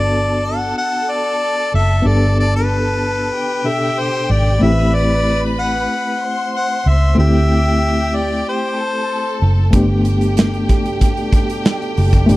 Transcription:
0.00 0.72 G1 medium
0.00 1.99 B3 medium
0.00 2.00 D4 medium
0.00 2.01 F#4 medium
0.00 2.02 A4 medium
0.00 3.29 A4 medium
0.00 0.47 D5 loud
0.00 3.29 A5 medium
0.46 0.77 F#5 medium
0.77 1.12 F#5 loud
1.11 1.74 D5 loud
1.74 2.01 F#1 medium
1.74 2.08 E5 loud
2.02 3.29 G1 loud
2.02 3.60 B3 medium
2.02 3.61 D4 medium
2.02 3.62 G4 soft
2.07 3.63 A4 medium
2.07 2.38 D5 medium
2.39 2.53 D5 medium
2.56 3.69 B4 medium
3.32 4.58 G4 medium
3.32 4.58 G5 loud
3.64 4.61 B2 soft
3.64 4.61 D4 soft
3.64 4.62 G4 soft
3.64 4.62 A4 medium
3.64 4.01 E5 loud
4.00 4.32 C5 medium
4.29 4.57 G#1 medium
4.29 4.64 D5 medium
4.59 5.85 A1 loud
4.59 7.12 A3 medium
4.59 7.13 C4 medium
4.59 7.14 E4 medium
4.59 6.18 B4 medium
4.59 4.96 E5 loud
4.59 6.18 B5 medium
4.64 7.15 G4 medium
4.94 5.42 D5 loud
5.59 6.50 F#5 medium
6.22 7.16 C5 medium
6.22 7.16 C6 medium
6.55 6.90 F#5 loud
6.86 7.13 C#2 medium
6.86 7.18 E5 medium
7.15 8.41 D2 loud
7.15 9.68 A3 medium
7.15 9.69 C4 medium
7.15 9.70 E4 medium
7.15 8.75 G4 medium
7.15 8.75 G5 medium
7.19 9.71 G4 medium
7.19 8.18 E5 medium
8.16 8.47 D5 medium
8.49 9.39 C5 medium
8.77 9.71 A4 medium
8.77 9.72 A5 medium
9.42 9.69 F#1 medium
9.71 10.97 G1 loud
9.71 12.37 B2 medium
9.71 12.37 D3 medium
9.71 12.37 G3 medium
9.71 12.24 A3 medium
9.71 12.37 A3 medium
9.71 12.24 B3 medium
9.71 12.25 D4 medium
9.71 12.37 G4 medium
9.71 12.37 A4 medium
9.71 12.37 G5 medium
9.71 kick medium
9.71 closed hi-hat loud
9.76 12.26 G4 medium
10.05 closed hi-hat medium
10.21 closed hi-hat soft
10.37 snare medium
10.37 closed hi-hat medium
10.54 closed hi-hat soft
10.69 kick medium
10.69 closed hi-hat medium
10.86 closed hi-hat soft
11.01 kick medium
11.01 closed hi-hat medium
11.17 closed hi-hat soft
11.32 kick medium
11.32 closed hi-hat medium
11.50 closed hi-hat medium
11.65 snare loud
11.65 closed hi-hat medium
11.82 closed hi-hat soft
11.97 12.25 F#1 loud
11.97 open hi-hat medium
12.13 kick medium
12.13 closed hi-hat soft
12.26 12.37 G1 loud
12.26 12.37 B2 medium
12.26 12.37 A3 medium
12.26 12.37 D4 medium
12.26 closed hi-hat medium
12.31 12.37 G4 medium

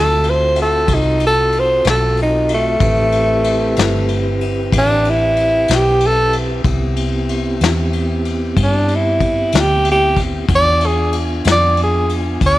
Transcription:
0.00 0.86 D2 medium
0.00 2.77 C4 medium
0.00 2.78 F4 medium
0.00 2.77 F#4 medium
0.00 0.31 A4 loud
0.00 2.77 A4 medium
0.24 ride medium
0.30 0.58 C5 medium
0.56 ride medium
0.62 0.96 A4 medium
0.88 1.82 C2 medium
0.88 kick medium
0.88 ride medium
0.94 1.23 D#4 medium
1.20 ride medium
1.27 1.61 A4 medium
1.52 ride medium
1.59 1.87 C5 loud
1.84 2.78 B1 medium
1.84 snare loud
1.84 ride medium
1.90 2.19 A4 medium
2.17 ride medium
2.22 2.51 D#4 medium
2.49 ride medium
2.54 4.40 A3 loud
2.80 3.74 A1 medium
2.80 6.62 C4 medium
2.80 6.62 E4 medium
2.80 6.62 G4 medium
2.80 6.62 B4 medium
2.80 kick loud
2.80 ride medium
3.12 ride medium
3.44 ride medium
3.76 4.71 G1 medium
3.76 snare loud
3.76 ride medium
4.08 ride medium
4.41 ride medium
4.72 5.66 A1 medium
4.72 kick medium
4.72 ride medium
4.78 5.11 D4 loud
5.05 ride medium
5.10 5.77 E4 loud
5.36 ride medium
5.68 6.63 B1 loud
5.68 snare medium
5.68 ride medium
5.75 6.08 G4 medium
6.00 ride medium
6.07 6.35 A4 loud
6.33 ride medium
6.64 7.58 C2 medium
6.64 10.46 B3 medium
6.64 10.46 C4 medium
6.64 10.46 E4 medium
6.64 10.46 G4 medium
6.64 kick loud
6.64 ride medium
6.96 ride medium
7.29 ride medium
7.61 8.55 E2 medium
7.61 snare loud
7.61 ride medium
7.93 ride medium
8.25 ride medium
8.57 9.50 G2 medium
8.57 kick medium
8.57 ride medium
8.63 8.97 D4 loud
8.88 ride medium
8.95 9.62 E4 medium
9.20 kick medium
9.20 ride medium
9.52 10.47 D2 medium
9.52 snare loud
9.52 ride medium
9.60 9.88 G4 loud
9.85 ride medium
9.92 10.20 G4 loud
10.17 kick medium
10.17 snare soft
10.17 ride medium
10.49 11.42 E2 medium
10.49 12.59 B3 medium
10.49 12.59 D4 medium
10.49 12.59 F4 medium
10.49 12.59 G#5 medium
10.49 kick loud
10.49 ride medium
10.55 10.88 D5 loud
10.81 ride medium
10.86 11.15 G#4 loud
11.12 ride medium
11.45 12.39 F2 medium
11.45 snare loud
11.45 ride medium
11.52 11.80 D5 loud
11.77 ride medium
11.83 12.12 G#4 medium
12.09 ride medium
12.41 12.59 D2 medium
12.41 kick medium
12.41 ride medium
12.46 12.59 D5 loud

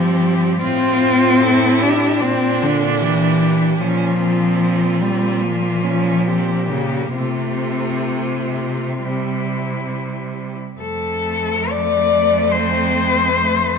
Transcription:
0.00 0.64 G2 soft
0.00 0.61 F3 medium
0.00 0.58 C4 soft
0.00 0.62 G4 medium
0.62 2.23 A2 medium
0.62 1.84 C4 medium
0.62 1.43 F4 medium
0.62 1.44 F4 medium
1.42 2.22 E4 medium
1.42 1.84 A4 medium
1.82 2.23 D4 medium
1.82 2.23 G4 medium
2.20 3.80 A#2 medium
2.20 2.64 C4 medium
2.20 3.82 D4 medium
2.20 3.03 F4 soft
2.62 3.02 D3 medium
3.01 3.79 E3 medium
3.01 3.83 G4 medium
3.80 7.13 A#2 medium
3.80 5.03 F3 medium
3.80 4.20 C#4 medium
3.80 4.62 F4 soft
4.21 5.45 C4 soft
4.62 6.29 F4 medium
5.02 5.45 G3 medium
5.43 6.72 F3 medium
5.43 5.85 A#3 soft
5.83 6.26 C#4 soft
6.27 6.70 C4 soft
6.27 7.17 G4 soft
6.71 7.16 C#3 medium
6.71 7.19 A#3 soft
7.16 9.87 C3 medium
7.16 8.99 C3 soft
7.16 9.02 A3 soft
7.16 9.05 F4 soft
9.02 10.54 C3 soft
9.02 10.55 G3 soft
9.02 10.58 E4 soft
10.78 13.79 F2 medium
10.78 13.79 A3 medium
10.78 11.71 A4 medium
11.70 12.53 D5 medium
12.51 13.30 C4 medium
12.51 13.79 C5 medium
13.29 13.79 A3 medium

